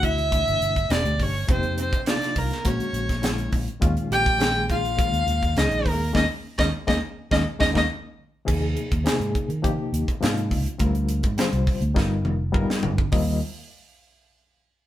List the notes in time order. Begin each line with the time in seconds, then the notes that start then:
Already playing: D2 B2 E3 A3 D4 F#4
0.03 E4 E5, kick, closed hi-hat
0.18 closed hi-hat
0.31 B2 E3 A3 D4 E4, kick, closed hi-hat
0.48 G1, closed hi-hat
0.61 G1, closed hi-hat
0.76 kick, closed hi-hat
0.89 E1 B2 E3 A3 D4 G4 D5, snare, closed hi-hat
1.04 D2, closed hi-hat
1.19 G1 C#4 C#5, kick, open hi-hat
1.47 F1 C3 F3 A#3 C4 D#4 G4 C5, kick, closed hi-hat
1.63 F2, closed hi-hat
1.78 C4 C5, closed hi-hat
1.93 kick, closed hi-hat
2.06 C3 F3 A#3 D4 D#4 F4 D5, snare, closed hi-hat
2.21 snare, closed hi-hat
2.36 C2 A#3 A#4, kick, open hi-hat
2.51 snare, closed hi-hat
2.64 A#1 D3 G#3 A#3 C#4 F#4 C#5, kick, closed hi-hat
2.68 C#4
2.80 closed hi-hat
2.93 A#1, closed hi-hat
3.09 kick, snare, closed hi-hat
3.21 D3 G#3 A#3 C#4 E4, snare, closed hi-hat
3.38 closed hi-hat
3.52 A#1, kick, open hi-hat
3.68 closed hi-hat
3.80 D#2 A#2 D#3 G#3 C#4 F4, kick, closed hi-hat
3.97 closed hi-hat
4.11 A#1 G4 G5, closed hi-hat
4.26 kick, closed hi-hat
4.38 A#2 D#3 G#3 C#4 G#4, snare, closed hi-hat
4.70 F4 F5, kick, closed hi-hat
4.85 closed hi-hat
4.96 A#2 D#3 G#3 C#4 F4, kick, closed hi-hat
5.12 D#2, closed hi-hat
5.27 D#2, closed hi-hat
5.43 kick, closed hi-hat
5.55 C#2 A#2 D#3 G#3 C#4 D#4 G#4 D#5, snare, closed hi-hat
5.71 A#1, closed hi-hat
5.85 D#2 A#3 A#4, kick, open hi-hat
6.13 D#2 D#3 G#3 A#3 C#4 D#4 D#5, kick, snare
6.58 D#2 D#3 G#3 A#3 C#4 D#4 D#5, kick, snare
6.87 D#2 D#3 G#3 A#3 C#4 D#4 D#5, kick, snare
7.31 D#2 D#3 G#3 A#3 C#4 D#4 D#5, kick, snare
7.59 D#2 D#3 G#3 A#3 C#4 D#4 D#5, kick, snare
7.74 D#2 D#3 G#3 A#3 C#4 D#4 D#5, kick, snare
8.45 D#2 C3 F3 A#3 D#4 G#4, kick, crash
8.77 closed hi-hat
8.92 D#2, kick, closed hi-hat
9.04 C3 F3 A#3 D#4 G#4, snare, closed hi-hat
9.20 G#2, closed hi-hat
9.35 kick, closed hi-hat
9.49 D#3, closed hi-hat
9.62 C3 F3 A#3 D#4 G4, kick, closed hi-hat
9.93 D#2, closed hi-hat
10.08 muted fingered electric bass stroke, kick, closed hi-hat
10.20 G#2 C3 F3 A#3 D#4 F4, snare, closed hi-hat
10.38 closed hi-hat
10.51 C#2, kick, open hi-hat
10.66 closed hi-hat
10.78 D2 D3 G3 C4 F4 A#4, kick, closed hi-hat
10.95 closed hi-hat
11.09 closed hi-hat
11.23 G#2, kick, closed hi-hat
11.37 D3 G3 C4 F4 C5, snare, closed hi-hat
11.53 C2, closed hi-hat
11.67 kick, open hi-hat
11.81 D2, closed hi-hat
11.95 G1 G3 B3 D#4 F4 A#4, kick, snare
12.24 F1, mid tom
12.52 G1 G3 B3 D#4 F4 A#4, kick
12.69 muted fingered electric bass stroke, snare
12.83 G1, floor tom
12.98 kick
13.12 D#2 G3 C4 F4 A#4 D#5, kick, open hi-hat